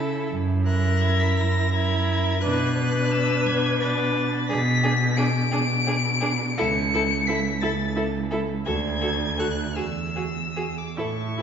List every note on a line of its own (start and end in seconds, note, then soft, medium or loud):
0.00 0.18 C#3 medium
0.00 0.29 E4 medium
0.00 0.28 A4 medium
0.00 0.26 E6 loud
0.30 1.25 F#2 loud
0.65 1.71 E4 medium
0.65 1.71 A#4 medium
0.65 1.03 F#6 medium
1.01 1.21 G#6 loud
1.20 1.39 B6 loud
1.37 2.31 F#2 medium
1.37 1.72 A#6 loud
1.72 2.42 E4 medium
1.72 2.41 A#4 medium
1.72 2.44 G#6 loud
2.42 3.34 B2 medium
2.42 2.77 D4 medium
2.42 2.76 B4 medium
2.42 3.13 F#6 loud
2.77 3.78 D4 medium
2.77 3.78 B4 medium
3.12 3.48 E6 loud
3.46 4.37 B2 medium
3.46 3.82 G#6 loud
3.80 4.48 D4 medium
3.80 4.47 B4 medium
3.80 4.48 A6 loud
4.49 5.40 B2 loud
4.49 4.57 D4 medium
4.49 4.57 G#4 medium
4.49 5.18 B6 loud
4.83 4.92 D4 medium
4.83 4.91 G#4 medium
5.17 5.26 D4 medium
5.17 5.25 G#4 medium
5.17 6.56 D7 loud
5.52 6.45 B2 medium
5.52 5.60 D4 medium
5.52 5.60 G#4 medium
5.87 5.95 D4 medium
5.87 5.95 G#4 medium
6.21 6.30 D4 medium
6.21 6.29 G#4 medium
6.57 7.51 C#2 medium
6.57 6.66 E4 medium
6.57 6.66 A4 medium
6.57 7.28 C#7 loud
6.94 7.02 E4 medium
6.94 7.02 A4 medium
7.27 7.36 E4 medium
7.27 7.36 A4 medium
7.27 7.63 B6 loud
7.61 8.55 C#2 medium
7.61 7.70 E4 medium
7.61 7.71 A4 medium
7.61 7.96 A6 loud
7.96 8.04 E4 medium
7.96 8.05 A4 medium
8.31 8.40 E4 medium
8.31 8.39 A4 medium
8.66 9.64 D2 medium
8.66 8.74 F#4 medium
8.66 8.74 A4 medium
8.66 9.41 G#6 loud
9.01 9.11 F#4 medium
9.01 9.09 A4 medium
9.38 9.47 F#4 medium
9.38 9.46 A4 medium
9.38 9.78 F#6 loud
9.76 10.84 E2 medium
9.76 9.85 F#4 medium
9.76 9.84 G#4 medium
9.76 10.79 E6 medium
10.16 10.24 F#4 medium
10.16 10.24 G#4 soft
10.57 10.65 F#4 medium
10.57 10.65 G#4 medium
10.78 10.97 D6 medium
10.97 11.42 A2 medium
10.97 11.05 E4 medium
10.97 11.07 A4 medium
10.97 11.42 C#6 medium
11.38 11.42 E4 medium